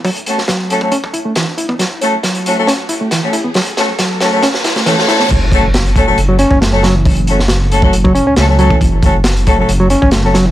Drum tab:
CC |----------------|----------------|----------------|x---------------|
HH |oxx-x-x-x-x-x-x-|x-x-xxx-x-x-x-x-|oxx-x-x-x-xxx-x-|x-x-xxx-x-x-x-x-|
SD |---oo-------o---|o---o---o---o---|o-o-o-o-oooooooo|----o-------o-o-|
BD |o------o-o-----o|----------------|----------------|o-o---o----o----|

CC |----------------|----------------|
HH |oxx-x-x-x-x-x-x-|x-x-xxx-x-x-x-x-|
SD |---oo-------o---|----o-------o-o-|
BD |o------o-o-----o|o-o---o----o----|